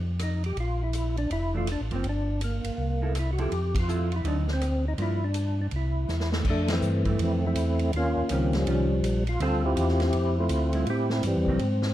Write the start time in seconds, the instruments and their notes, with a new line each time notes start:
Already playing: tonewheel organ F2
0.19 tonewheel organ D#4, cross-stick, hi-hat pedal, ride
0.44 tonewheel organ G4, ride
0.56 tonewheel organ A#1, ride
0.60 tonewheel organ F4
0.83 tonewheel organ E4
0.93 hi-hat pedal, ride
1.17 tonewheel organ D4, ride
1.30 tonewheel organ F1 E4, ride
1.54 hollow-body jazz guitar E3 A3 D4, tonewheel organ F4
1.67 cross-stick, hi-hat pedal, ride
1.72 tonewheel organ D4
1.80 tonewheel organ A1
1.91 tonewheel organ F#1, hollow-body jazz guitar F3 A#3 C4, ride
1.95 tonewheel organ C4
2.04 tonewheel organ G1, ride
2.09 tonewheel organ D4
2.41 tonewheel organ A#3, hi-hat pedal, ride
2.64 tonewheel organ G1, ride
2.78 tonewheel organ C2
3.02 hollow-body jazz guitar A#3 E4 A4
3.15 cross-stick, hi-hat pedal, ride
3.19 tonewheel organ E4
3.33 tonewheel organ F#4
3.38 hollow-body jazz guitar F3 C4 E4 A4, tonewheel organ G4, ride
3.51 tonewheel organ F2, ride
3.75 kick, ride
3.79 tonewheel organ F4
3.88 hollow-body jazz guitar F3 C4 E4 A4, hi-hat pedal
4.12 ride
4.16 tonewheel organ E4
4.24 tonewheel organ D2 D4, hollow-body jazz guitar D3 F#3 C4 D#4, ride
4.48 snare
4.53 tonewheel organ C4
4.61 cross-stick, hi-hat pedal, ride
4.88 tonewheel organ D#4
4.98 tonewheel organ G2 E4, hollow-body jazz guitar F3 A#3 D4, ride
5.24 tonewheel organ D4
5.34 hi-hat pedal, ride
5.62 tonewheel organ D4
5.71 tonewheel organ C2, ride
5.76 tonewheel organ E4
6.08 tonewheel organ E2, snare, hi-hat pedal
6.20 snare
6.32 hollow-body jazz guitar E3 A3 C4, snare
6.45 tonewheel organ F2, kick, crash
6.49 tonewheel organ A3 D4
6.68 snare, ride
6.73 tonewheel organ E3 A3 C4
6.82 tonewheel organ G2, hi-hat pedal
7.05 hollow-body jazz guitar E3 A3 C4, kick, ride
7.19 tonewheel organ F2 E4, ride
7.23 tonewheel organ A3 C4
7.46 tonewheel organ A3 C4 E4
7.55 tonewheel organ E2, hi-hat pedal, ride
7.79 ride
7.93 tonewheel organ D#2 F4, ride
7.97 tonewheel organ A#3 C#4
8.16 tonewheel organ D#2
8.29 tonewheel organ C#2 C4, hollow-body jazz guitar D#3 G3 C#4 F4, hi-hat pedal, ride
8.53 tonewheel organ F3 G3 C#4, snare, ride
8.67 tonewheel organ C2, hollow-body jazz guitar D#3 G3 C#4 F4, ride
9.03 tonewheel organ A#1, hi-hat pedal, ride
9.27 tonewheel organ F4, ride
9.40 tonewheel organ D2 C4 F4 A4, hollow-body jazz guitar D3 G3 C4 F4, ride
9.65 tonewheel organ C4 E4 G4
9.77 tonewheel organ E2, hi-hat pedal, ride
9.88 snare
10.00 tonewheel organ C4 E4 G4, snare, ride
10.13 tonewheel organ F2, ride
10.39 tonewheel organ A3 C4 F4
10.49 tonewheel organ D2, hi-hat pedal, ride
10.73 hollow-body jazz guitar G3 C4 E4, tonewheel organ F4, ride
10.85 tonewheel organ A2, ride
10.90 tonewheel organ C4 E4 G4
11.10 tonewheel organ E4, snare
11.23 tonewheel organ G2 E3, hi-hat pedal, ride
11.27 tonewheel organ G3 C4
11.36 tonewheel organ E2
11.46 tonewheel organ C2, hollow-body jazz guitar F#3 A#3 C4, kick
11.59 tonewheel organ G#2, ride
11.82 snare